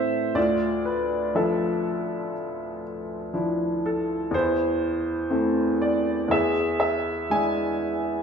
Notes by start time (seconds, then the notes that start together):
Already playing: A2 E3 A3 C4 C5 E5
0.35 D2 F4 D5
0.85 B4
1.35 F3 D4 A4 E5
1.39 F4
3.34 F3 D4 E4
3.86 A4
4.31 E2 E4 C5
5.30 A3 C4 E4
5.82 D5
6.28 E2 E5
6.32 G#4
6.80 E5
7.30 G#3 D4 E4 G#5